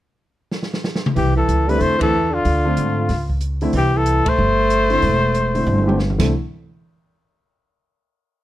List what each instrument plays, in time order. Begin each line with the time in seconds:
0.51 snare
0.63 snare
0.74 snare
0.84 snare
0.95 snare
1.06 mid tom
1.15 upright bass C2, tenor saxophone E3, trumpet G4, kick, open hi-hat
1.36 tenor saxophone E3, trumpet A4
1.48 upright bass C#2, closed hi-hat
1.67 grand piano D3 A3 C4 E4, tenor saxophone G3, trumpet B4, open hi-hat
1.79 upright bass E2, tenor saxophone A3, trumpet C5, kick, open hi-hat
1.98 grand piano D3 A3 C4 E4, tenor saxophone E3, trumpet A4, kick, ride
2.32 tenor saxophone D3, trumpet F4
2.45 upright bass D2, kick, open hi-hat
2.65 grand piano D3 A3 C4 F4
2.77 upright bass G#2, closed hi-hat
3.09 upright bass C#2, kick, snare, open hi-hat
3.30 kick
3.41 closed hi-hat
3.61 grand piano D3 A3 C4 E4, open hi-hat
3.73 upright bass C2, tenor saxophone E3, kick, open hi-hat
3.77 trumpet G4
3.94 tenor saxophone E3, trumpet A4
4.06 closed hi-hat
4.26 tenor saxophone A3, trumpet C5, muted upright bass stroke, kick, ride
4.38 upright bass G1
4.70 closed hi-hat
4.90 grand piano D3 A3 C4 E4, open hi-hat
5.02 upright bass E1, kick, open hi-hat
5.34 closed hi-hat
5.55 grand piano D3 A3 C4 E4, open hi-hat
5.67 upright bass G1, high tom
5.78 high tom
5.87 grand piano D3 A3 C4 G4, high tom
5.99 snare
6.10 mid tom
6.18 upright bass C2, grand piano D3 A3 C4 E4, kick, snare, crash